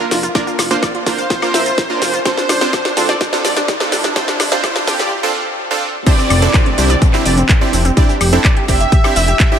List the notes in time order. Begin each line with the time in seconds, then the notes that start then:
Already playing: riser
0.00 A#3 D4 F4 A#4
0.11 F1 F4, snare, open hi-hat, cabasa
0.23 F4, closed hi-hat, cabasa
0.35 A#3 D4 F4 A#4 D5, kick, snare, closed hi-hat, cabasa
0.47 F4, cabasa
0.59 F1 F4, snare, open hi-hat, cabasa, high woodblock
0.71 A#3 D4 F4 C5, closed hi-hat, cabasa
0.83 D5, kick, snare, closed hi-hat, cabasa, high woodblock
0.95 F4, closed hi-hat
1.06 F1 A#3 D4 F4 A#4 C5, kick, snare, open hi-hat, cabasa
1.18 F5, closed hi-hat, cabasa
1.30 F4, kick, snare, closed hi-hat, cabasa
1.42 A#3 D4 F4 A#4, cabasa, high woodblock
1.54 A#1 E5, snare, open hi-hat, cabasa
1.66 F4, closed hi-hat, cabasa
1.78 kick, snare, closed hi-hat, cabasa
1.90 A#3 D4 F4 A#4
2.02 F1 F4, snare, open hi-hat, cabasa
2.14 F4, closed hi-hat, cabasa
2.25 C4 D4 F4 A4 C5, kick, snare, closed hi-hat, cabasa
2.37 D4, snare, cabasa
2.49 F1 D4, snare, open hi-hat, cabasa, high woodblock
2.61 C4 D4 F4 C5, snare, closed hi-hat, cabasa
2.73 C5, kick, snare, closed hi-hat, cabasa, high woodblock
2.85 D4, snare, closed hi-hat
2.97 C2 C4 D4 F4 A4, snare, open hi-hat, cabasa
3.09 D5, snare, closed hi-hat, cabasa
3.21 D4, kick, snare, closed hi-hat, cabasa
3.33 C4 D4 F4 A4, snare, cabasa
3.45 F1 D5, snare, open hi-hat, cabasa
3.57 D4, snare, closed hi-hat, cabasa
3.68 kick, snare, closed hi-hat, cabasa
3.80 C4 D4 F4 A4, snare
3.92 F1 D4, snare, open hi-hat, cabasa
4.04 D4, snare, closed hi-hat, cabasa
4.16 C4 D4 F4 A4 C5, kick, snare, closed hi-hat, cabasa
4.28 D4, snare, closed hi-hat, cabasa
4.40 F1 D4, snare, open hi-hat, cabasa, high woodblock
4.52 C4 D4 F4 C5, snare, closed hi-hat, cabasa
4.64 C5, kick, snare, closed hi-hat, cabasa, high woodblock
4.76 D4, snare, closed hi-hat
4.87 F1 C4 D4 F4 G4 A4, kick, snare, open hi-hat, cabasa
4.99 D5, snare, closed hi-hat, cabasa
5.23 C4 D4 F4 A4
5.71 C4 D4 F4 A4
6.06 C4 D4 E4 G4 C5 D5 G5, kick, closed hi-hat, crash, downlifter, cabasa
6.19 C4, cabasa
6.30 F1 C4, open hi-hat, cabasa, high woodblock
6.42 C4 D4 E4 A4, closed hi-hat, cabasa
6.54 C5, kick, clap, closed hi-hat, cabasa, high woodblock
6.66 C4, closed hi-hat
6.78 C2 C4 D4 E4 G4, open hi-hat, cabasa
6.90 D5, closed hi-hat, cabasa
7.02 C4, kick, closed hi-hat, cabasa
7.14 C4 D4 E4 G4, clap, cabasa
7.26 F1 D5, open hi-hat, cabasa
7.38 C4, closed hi-hat, cabasa
7.49 kick, clap, closed hi-hat, cabasa
7.61 C4 D4 E4 G4
7.73 F1 C4, open hi-hat, cabasa
7.85 C4, closed hi-hat, cabasa
7.97 C4 D4 E4 G4 D5, kick, closed hi-hat, cabasa
8.09 G4, cabasa
8.21 F1 G4, open hi-hat, cabasa, high woodblock
8.33 C4 D4 E4 G4 A4, closed hi-hat, cabasa
8.44 D5, kick, clap, closed hi-hat, cabasa, high woodblock
8.57 G4, closed hi-hat
8.68 F1 C4 D4 E4 G4 E5, kick, open hi-hat, cabasa
8.80 E5, closed hi-hat, cabasa
8.92 G4, kick, closed hi-hat, cabasa
9.04 C4 D4 E4 G4, cabasa, high woodblock
9.16 F1 E5, open hi-hat, cabasa
9.28 G4, closed hi-hat, cabasa
9.40 kick, clap, closed hi-hat, cabasa
9.52 C4 D4 E4 G4